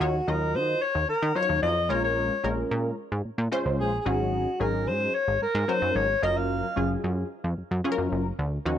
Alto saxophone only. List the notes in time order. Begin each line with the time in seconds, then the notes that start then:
Already playing: F#4
0.29 A#4
0.55 C5
0.82 C#5
1.09 A#4
1.36 C#5
1.63 D#5
1.90 C#5
2.04 C#5
3.80 G#4
4.00 G#4
4.07 F#4
4.61 A#4
4.88 C5
5.15 C#5
5.42 A#4
5.69 C5
5.96 C#5
6.23 D#5
6.37 F5